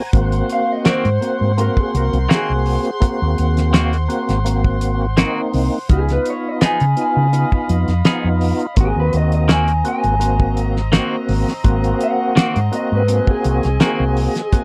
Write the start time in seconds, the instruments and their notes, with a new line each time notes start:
Already playing: horn section C5 F#5, tonewheel organ G#5
0.13 fingered electric bass G#1, tonewheel organ A#3 C4 F#4, horn section C6, kick, closed hi-hat
0.32 closed hi-hat
0.49 clean electric guitar F5, closed hi-hat
0.72 clean electric guitar D#5
0.85 clean electric guitar D#3 A#3 C4 F#4, muted fingered electric bass stroke, snare, closed hi-hat
0.89 clean electric guitar C5
1.05 fingered electric bass G#2, closed hi-hat
1.21 tonewheel organ A#3 C4 F#4, closed hi-hat
1.41 fingered electric bass G#2
1.58 tonewheel organ A#3 C4 F#4, clean electric guitar A#4, closed hi-hat
1.77 clean electric guitar G#4, kick
1.94 fingered electric bass C2, clean electric guitar A#4, closed hi-hat
2.13 fingered electric bass C2, closed hi-hat
2.29 clean electric guitar D#3 A#3 C4 F#4, tonewheel organ A#3 C4 F#4, snare, closed hi-hat
2.35 clean electric guitar G#4
2.50 fingered electric bass C2
2.66 open hi-hat
2.85 closed hi-hat
3.00 tonewheel organ A#3 C4 F#4, kick, closed hi-hat
3.22 fingered electric bass D#2
3.38 fingered electric bass D#2, closed hi-hat
3.57 snare, closed hi-hat
3.73 clean electric guitar D#3 A#3 C4 F#4, snare, closed hi-hat
3.93 closed hi-hat
4.08 tonewheel organ A#3 C4 F#4, closed hi-hat
4.29 fingered electric bass G#1, snare, closed hi-hat
4.45 tonewheel organ A#3 C4 F#4, closed hi-hat
4.64 kick
4.81 closed hi-hat
5.17 clean electric guitar D#3 A#3 C4 F#4, tonewheel organ A#3 C4 D#4, snare, closed hi-hat
5.54 fingered electric bass C2, open hi-hat
5.89 fingered electric bass C#2, tonewheel organ B3 D#4 F4, clean electric guitar G#4, horn section D#5 F5 B5, kick, closed hi-hat
6.09 clean electric guitar B4, snare, closed hi-hat
6.25 closed hi-hat
6.30 clean electric guitar C#5
6.49 clean electric guitar D#5
6.61 clean electric guitar F3 B3 D#4 G#4, muted fingered electric bass stroke, snare, closed hi-hat
6.66 clean electric guitar G#5
6.80 fingered electric bass C#3, closed hi-hat
6.97 tonewheel organ B3 D#4 F4, closed hi-hat
7.01 clean electric guitar G#5
7.17 fingered electric bass C#3
7.32 tonewheel organ B3 D#4 F4, closed hi-hat
7.52 kick
7.69 fingered electric bass F2, closed hi-hat
7.88 fingered electric bass F2, snare, closed hi-hat
8.05 clean electric guitar F3 B3 D#4 G#4, tonewheel organ B3 D#4 F4, muted fingered electric bass stroke, snare, closed hi-hat
8.24 fingered electric bass F2
8.41 open hi-hat
8.60 closed hi-hat
8.75 fingered electric bass G#1, tonewheel organ A#3 C4 F#4, horn section C4 D#5 A#5, kick, closed hi-hat
8.81 clean electric guitar G#4
8.96 fingered electric bass D#2, clean electric guitar B4
9.13 fingered electric bass D#2, closed hi-hat
9.17 clean electric guitar D#5
9.32 clean electric guitar D#5, closed hi-hat
9.48 clean electric guitar D#3 A#3 C4 F#4 G#5, snare, closed hi-hat
9.68 closed hi-hat
9.84 tonewheel organ A#3 C4 F#4, closed hi-hat
9.88 clean electric guitar G#5
10.04 fingered electric bass G#1, closed hi-hat
10.19 tonewheel organ A#3 C4 F#4, closed hi-hat
10.40 kick
10.57 closed hi-hat
10.76 snare
10.92 clean electric guitar D#3 A#3 C4 F#4, tonewheel organ A#3 C4 F#4, snare, closed hi-hat
11.29 fingered electric bass G#1, open hi-hat
11.48 snare
11.64 fingered electric bass G#1, tonewheel organ A#3 C4 F#4, kick, closed hi-hat
11.84 closed hi-hat
12.01 clean electric guitar F#5, closed hi-hat
12.36 clean electric guitar D#3 A#3 C4 F#4, muted fingered electric bass stroke, snare, closed hi-hat
12.56 fingered electric bass G#2, closed hi-hat
12.71 tonewheel organ A#3 C4 F#4, clean electric guitar D#5, closed hi-hat
12.92 fingered electric bass G#2, clean electric guitar B4
13.08 tonewheel organ A#3 C4 F#4, horn section G#5, closed hi-hat
13.27 clean electric guitar G#4, kick
13.44 fingered electric bass C2, closed hi-hat
13.63 fingered electric bass C2, snare, closed hi-hat
13.80 clean electric guitar D#3 A#3 C4 F#4, tonewheel organ A#3 C4 F#4, snare, closed hi-hat
13.84 clean electric guitar G#4
14.00 fingered electric bass C2
14.17 open hi-hat
14.35 snare, closed hi-hat
14.52 tonewheel organ A#3 C4 F#4, kick, closed hi-hat